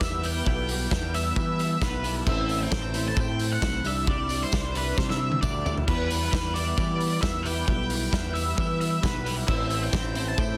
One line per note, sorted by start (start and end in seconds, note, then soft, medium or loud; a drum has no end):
0.00 0.40 E2 medium
0.00 0.21 G3 medium
0.00 0.21 B3 medium
0.00 5.83 E4 medium
0.00 0.22 E4 medium
0.00 2.22 B4 medium
0.00 0.25 E5 medium
0.00 2.22 G5 medium
0.00 0.43 B5 medium
0.00 kick loud
0.00 snare loud
0.00 tambourine loud
0.22 0.42 G3 medium
0.22 0.43 B3 medium
0.22 0.44 E4 medium
0.22 0.46 G5 medium
0.22 open hi-hat medium
0.22 tambourine medium
0.44 0.86 B1 medium
0.44 0.89 G3 medium
0.44 0.90 B3 medium
0.44 0.91 E4 medium
0.44 1.16 G5 loud
0.44 3.80 A5 medium
0.44 kick loud
0.69 open hi-hat medium
0.90 1.31 E2 medium
0.90 1.12 G3 medium
0.90 1.13 B3 medium
0.90 1.14 E4 loud
0.90 kick loud
0.90 snare loud
0.90 tambourine medium
1.13 1.35 G3 medium
1.13 1.35 B3 medium
1.13 1.36 E4 medium
1.13 1.35 E5 loud
1.13 open hi-hat medium
1.13 tambourine medium
1.36 1.76 E3 loud
1.36 1.80 G3 loud
1.36 1.80 B3 loud
1.36 1.82 E4 loud
1.36 1.60 E5 medium
1.36 kick loud
1.36 tambourine medium
1.59 1.81 E5 loud
1.59 open hi-hat medium
1.81 2.21 B1 medium
1.81 2.01 G3 medium
1.81 2.03 B3 medium
1.81 2.04 E4 medium
1.81 2.14 B4 loud
1.81 kick loud
1.81 snare loud
1.81 tambourine medium
2.03 2.24 G3 medium
2.03 2.25 B3 medium
2.03 2.27 E4 medium
2.03 open hi-hat medium
2.03 tambourine medium
2.26 2.66 A1 loud
2.26 2.70 A3 medium
2.26 2.72 C4 medium
2.26 2.72 E4 medium
2.26 3.83 C5 medium
2.26 2.59 E5 loud
2.26 3.83 C6 medium
2.26 kick loud
2.26 crash medium
2.49 open hi-hat medium
2.49 tambourine medium
2.63 3.07 G5 loud
2.71 3.12 A1 medium
2.71 2.93 A3 medium
2.71 2.94 C4 loud
2.71 2.96 E4 loud
2.71 kick loud
2.71 snare loud
2.71 tambourine medium
2.94 3.14 A3 medium
2.94 3.15 C4 medium
2.94 3.16 E4 medium
2.94 open hi-hat medium
2.94 tambourine medium
3.08 3.18 A5 loud
3.15 3.57 A2 loud
3.15 3.60 A3 loud
3.15 3.61 C4 loud
3.15 3.63 E4 loud
3.15 kick loud
3.15 tambourine medium
3.20 3.50 G5 loud
3.39 open hi-hat medium
3.53 3.86 F#5 loud
3.61 3.82 B1 loud
3.61 3.83 A3 medium
3.61 3.83 C4 medium
3.61 3.86 E4 medium
3.61 kick loud
3.61 snare loud
3.61 tambourine loud
3.84 4.44 C2 medium
3.84 4.07 G3 medium
3.84 4.06 D4 medium
3.84 4.08 E4 loud
3.84 5.85 D5 medium
3.84 4.07 E5 medium
3.84 9.44 G5 medium
3.84 5.85 C6 medium
3.84 open hi-hat medium
3.84 tambourine medium
4.07 4.53 G3 medium
4.07 4.53 D4 medium
4.07 4.55 E4 medium
4.07 4.42 D5 loud
4.07 kick loud
4.07 tambourine soft
4.29 open hi-hat medium
4.29 tambourine medium
4.43 4.73 C5 medium
4.52 4.92 C2 medium
4.52 4.74 G3 medium
4.52 4.74 D4 medium
4.52 4.75 E4 loud
4.52 kick loud
4.52 snare loud
4.52 tambourine loud
4.75 4.97 G3 medium
4.75 4.97 D4 medium
4.75 4.99 E4 medium
4.75 4.97 B4 medium
4.75 open hi-hat medium
4.98 5.37 C3 medium
4.98 5.41 G3 loud
4.98 5.41 D4 medium
4.98 5.43 E4 loud
4.98 5.03 C5 loud
4.98 kick loud
4.98 snare medium
4.98 tambourine medium
5.10 5.41 E5 medium
5.10 snare medium
5.21 tambourine soft
5.32 high tom medium
5.41 5.82 D2 medium
5.41 5.65 G3 medium
5.41 5.65 D4 medium
5.41 5.66 E4 medium
5.41 5.73 D5 medium
5.41 kick loud
5.41 mid tom medium
5.41 tambourine loud
5.65 5.87 G3 medium
5.65 5.86 D4 medium
5.65 5.88 E4 medium
5.65 floor tom medium
5.65 tambourine medium
5.77 floor tom medium
5.86 6.27 E2 medium
5.86 6.31 G3 medium
5.86 6.32 B3 medium
5.86 10.57 E4 medium
5.86 6.32 E4 medium
5.86 9.43 B4 medium
5.86 6.57 B4 medium
5.86 9.43 B5 medium
5.86 kick loud
5.86 crash medium
6.10 open hi-hat medium
6.10 tambourine medium
6.31 6.72 E2 medium
6.31 6.54 G3 loud
6.31 6.54 B3 medium
6.31 6.55 E4 medium
6.31 kick loud
6.31 snare loud
6.31 tambourine loud
6.54 6.76 G3 medium
6.54 6.76 B3 medium
6.54 6.78 E4 loud
6.54 7.21 D5 medium
6.54 open hi-hat medium
6.54 tambourine medium
6.77 7.17 E3 loud
6.77 7.20 G3 medium
6.77 7.21 B3 loud
6.77 7.22 E4 loud
6.77 kick loud
6.77 tambourine medium
7.00 open hi-hat medium
7.21 7.62 E2 medium
7.21 7.43 G3 medium
7.21 7.44 B3 medium
7.21 7.46 E4 medium
7.21 7.45 E5 loud
7.21 kick loud
7.21 snare loud
7.21 tambourine medium
7.43 7.67 G3 medium
7.43 7.67 B3 medium
7.43 7.69 E4 loud
7.43 7.65 G5 medium
7.43 open hi-hat medium
7.43 tambourine medium
7.66 8.07 B1 medium
7.66 8.12 G3 medium
7.66 8.12 B3 medium
7.66 8.14 E4 medium
7.66 8.36 G5 loud
7.66 kick loud
7.90 open hi-hat medium
8.13 8.52 E2 medium
8.13 8.33 G3 medium
8.13 8.33 B3 medium
8.13 8.34 E4 loud
8.13 kick loud
8.13 snare loud
8.13 tambourine medium
8.34 8.56 G3 medium
8.34 8.57 B3 loud
8.34 8.58 E4 loud
8.34 8.56 E5 medium
8.34 open hi-hat medium
8.34 tambourine medium
8.57 8.97 E3 medium
8.57 9.01 G3 medium
8.57 9.02 B3 loud
8.57 9.04 E4 loud
8.57 8.78 E5 loud
8.57 kick loud
8.57 tambourine medium
8.81 9.04 E5 loud
8.81 open hi-hat medium
9.02 9.43 B1 medium
9.02 9.24 G3 medium
9.02 9.24 B3 medium
9.02 9.25 E4 medium
9.02 9.34 B4 medium
9.02 kick loud
9.02 snare loud
9.02 tambourine loud
9.25 9.46 G3 medium
9.25 9.46 B3 medium
9.25 9.49 E4 medium
9.25 open hi-hat medium
9.25 tambourine medium
9.46 9.88 A1 loud
9.46 9.92 E3 medium
9.46 9.92 C4 medium
9.46 9.93 E4 medium
9.46 10.57 C5 medium
9.46 9.83 E5 loud
9.46 10.57 A5 medium
9.46 kick loud
9.46 crash medium
9.70 open hi-hat medium
9.70 tambourine medium
9.83 10.24 G5 loud
9.93 10.33 A1 medium
9.93 10.14 E3 medium
9.93 10.15 C4 medium
9.93 10.16 E4 loud
9.93 kick loud
9.93 snare loud
9.93 tambourine medium
10.15 10.37 E3 medium
10.15 10.37 C4 loud
10.15 10.38 E4 medium
10.15 open hi-hat medium
10.15 tambourine medium
10.28 10.39 A5 loud
10.38 10.57 A2 loud
10.38 10.57 E3 medium
10.38 10.57 C4 loud
10.38 10.57 E4 loud
10.38 10.57 G5 loud
10.38 kick loud
10.38 tambourine medium